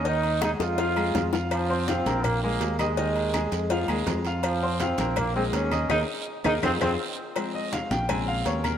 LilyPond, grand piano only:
<<
  \new Staff \with { instrumentName = "Grand piano" } { \time 4/4 \key f \minor \tempo 4 = 164 <ees ees' ees''>4 <aes aes' aes''>4 <f f' f''>8 <aes aes' aes''>4 <f' f'' f'''>8~ | <f' f'' f'''>8 <c' c'' c'''>8 <f f' f''>8 <bes bes' bes''>4 <aes aes' aes''>4 <ees' ees'' ees'''>8 | <ees ees' ees''>4 <aes aes' aes''>4 <f f' f''>8 <aes aes' aes''>4 <f' f'' f'''>8~ | <f' f'' f'''>8 <c' c'' c'''>8 <f f' f''>8 <bes bes' bes''>4 <aes aes' aes''>4 <ees' ees'' ees'''>8 |
<ees' aes' bes'>8 r4 <ees' aes' bes'>8 <f' aes' c''>8 <f' aes' c''>8 r4 | r8 ees''8 f''8 g''8 aes''8 f''8 des''8 bes'8 | }
  \new Staff \with { instrumentName = "Grand piano" } { \clef bass \time 4/4 \key f \minor r1 | r1 | r1 | r1 |
r1 | <f aes c'>4. r8 <des aes c'>2 | }
>>